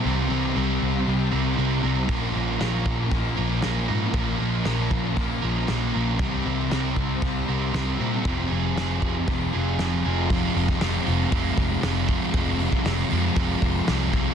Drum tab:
HH |----------------|o---o---o---o---|o---o---o---o---|o---o---o---o---|
SD |----------------|----o-------o---|----o-------o---|----o-------o---|
BD |----------------|o-----o-o-------|o-----o-o-------|o-----o-o-------|

HH |o---o---o---o---|o-o-o-o-o-o-o-o-|o-o-o-o-o-o-o---|
SD |----o-------o---|----o-------o---|----o-------o---|
BD |o-----o-o-------|o--o----o-o---o-|o--o----o-o---o-|